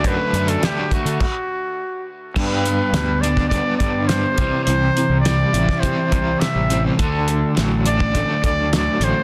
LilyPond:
<<
  \new Staff \with { instrumentName = "Trumpet" } { \time 4/4 \key d \mixolydian \tempo 4 = 104 b'8. a'16 g'8 fis'2 r8 | b'4. d''8 d''8 d''8 c''4 | c''4 d''4 c''4 e''8. r16 | a'4 r8 d''4 d''8 d''8 c''8 | }
  \new Staff \with { instrumentName = "Overdriven electric guitar" } { \clef bass \time 4/4 \key d \mixolydian <d fis a d'>8 <d fis a d'>8 <d fis a d'>16 <fis a d'>8. r2 | g,4 g8 d'8 b8 d8 g8 c8 | c4 g8 e'8 c'8 c8 g8 c'8 | d4 fis8 d'8 a8 d8 fis8 a8 | }
  \new Staff \with { instrumentName = "Overdriven electric guitar" } { \clef bass \time 4/4 \key d \mixolydian <d a d' fis'>8 a8 d8 a8 r2 | <g b d'>8 <g b>8 <g b>8 <g b>8 <g b>8 <g b>8 <g b>8 <c e g>8 | <c e>8 <c e>8 <c e>8 <c e>8 <c e>8 <c e>8 <c e>8 <c e>8 | <d a d'>8 <d a>8 <d a>8 <d a>8 <d a>8 <d a>8 <d a>8 <d a>8 | }
  \new Staff \with { instrumentName = "Fingered electric bass" } { \clef bass \time 4/4 \key d \mixolydian fis,16 r16 fis,8 r8. d16 r2 | g,4 d,4. g,4 c,16 r16 | c,8 r16 c,8. a,,16 r16 c16 r16 c,8 r16 a,,8. | d,4 a,,4. d,4 a,,16 r16 | }
  \new DrumStaff \with { instrumentName = "Drums" } \drummode { \time 4/4 <hh bd>8 hh16 hh16 <hh sn>8 <hh bd>16 hh16 <cymc bd>4 r4 | <cymc bd>8 hh8 <hh sn>8 hh16 <bd sn>16 <hh bd>8 <hh bd>8 <hh sn>8 <hh bd>8 | hh8 hh8 <hh sn>8 hh16 <bd sn>16 <hh bd>8 <hh bd>8 <hh sn>8 hh8 | <hh bd>8 hh8 <hh sn>8 hh16 bd16 <hh bd>8 <hh bd>8 <hh sn>8 hh8 | }
>>